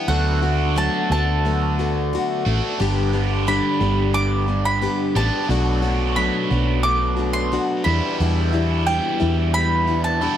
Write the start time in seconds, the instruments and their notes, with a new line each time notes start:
0.08 fingered electric bass D2, steel-string acoustic guitar D3 F#3 A3 B3 F#4, overdriven electric guitar D4, mandolin F#5
0.42 steel-string acoustic guitar A3 B3 F#4
0.76 steel-string acoustic guitar D3 F#3 A3 B3 F#4, mandolin A5
1.10 fingered electric bass D2, steel-string acoustic guitar A3 B3 F#4, mandolin A5
1.45 steel-string acoustic guitar F#3 A3 B3 F#4
1.79 steel-string acoustic guitar A3 B3 F#4
2.13 steel-string acoustic guitar D3 F#3 A3 B3 F#4
2.46 fingered electric bass A1, overdriven electric guitar D3 D4, steel-string acoustic guitar A3 B3 F#4
2.80 fingered electric bass G1, steel-string acoustic guitar G2 D3 G3 B3 D4 G4
3.13 steel-string acoustic guitar G3 B3 D4 G4
3.47 steel-string acoustic guitar G2 D3 G3 B3 D4 G4, mandolin B5
3.81 fingered electric bass G1, steel-string acoustic guitar G3 B3 D4 G4
4.13 steel-string acoustic guitar G3 B3 D4 G4, mandolin D6
4.47 steel-string acoustic guitar G3 B3 D4 G4
4.65 mandolin B5
4.81 steel-string acoustic guitar G2 D3 G3 B3 D4 G4
5.16 fingered electric bass A1, overdriven electric guitar G2 D3, steel-string acoustic guitar G3 B3 D4 G4, mandolin A5
5.49 fingered electric bass B1, steel-string acoustic guitar B2 F#3 A3 D4 F#4, overdriven electric guitar B3
5.82 steel-string acoustic guitar A3 D4 F#4
6.16 steel-string acoustic guitar B2 F#3 A3 D4 F#4, mandolin B5
6.50 fingered electric bass B1, steel-string acoustic guitar A3 D4 F#4
6.83 steel-string acoustic guitar F#3 A3 D4 F#4, mandolin D6
7.17 steel-string acoustic guitar A3 D4 F#4
7.33 mandolin C6
7.52 steel-string acoustic guitar B2 F#3 A3 D4 F#4
7.84 overdriven electric guitar E2 B2 B3, fingered electric bass E2, steel-string acoustic guitar E3 G3 D4 E4, mandolin B5
8.20 steel-string acoustic guitar E2 B2 E3 G3 D4 E4, fingered electric bass E2
8.53 steel-string acoustic guitar E3 G3 D4 E4
8.87 steel-string acoustic guitar E2 B2 E3 G3 D4 E4, mandolin G5
9.20 fingered electric bass E2, steel-string acoustic guitar E3 G3 D4 E4
9.53 steel-string acoustic guitar E3 G3 D4 E4, mandolin B5
9.87 steel-string acoustic guitar E3 G3 D4 E4
10.04 mandolin A5
10.21 steel-string acoustic guitar E2 B2 E3 G3 D4 E4, overdriven electric guitar B3